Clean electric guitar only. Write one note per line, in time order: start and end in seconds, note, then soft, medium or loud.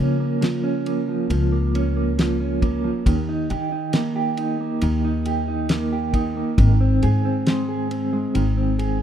0.00 0.40 F3 medium
0.00 0.20 A#3 medium
0.00 0.62 C#4 medium
0.20 0.86 A#3 medium
0.41 1.07 F3 medium
0.64 1.74 C#4 medium
0.87 1.51 A#3 medium
1.08 1.29 F3 medium
1.30 2.17 F3 medium
1.52 1.95 A#3 medium
1.75 2.39 C#4 medium
1.97 2.61 A#3 medium
2.18 2.83 F3 medium
2.40 3.15 C#4 medium
2.62 3.15 A#3 medium
2.84 3.06 F3 medium
3.06 4.81 D#3 medium
3.29 3.72 D#4 medium
3.50 4.15 G4 medium
3.72 4.38 D#4 medium
3.94 4.59 A#3 medium
4.16 5.25 G4 medium
4.38 5.04 D#4 medium
4.60 5.69 A#3 medium
4.83 6.58 D#3 medium
5.05 5.48 D#4 soft
5.26 5.91 G4 medium
5.48 6.14 D#4 medium
5.70 6.36 A#3 medium
5.92 6.67 G4 medium
6.14 6.67 D#4 medium
6.37 6.67 A#3 medium
6.59 8.33 D#3 medium
6.81 7.24 C4 medium
7.03 7.68 G#4 medium
7.25 7.90 C4 medium
7.47 8.12 G#3 medium
7.69 8.78 G#4 medium
7.91 8.56 C4 medium
8.13 9.02 G#3 medium
8.35 9.02 D#3 medium
8.57 9.00 C4 soft
8.79 9.02 G#4 medium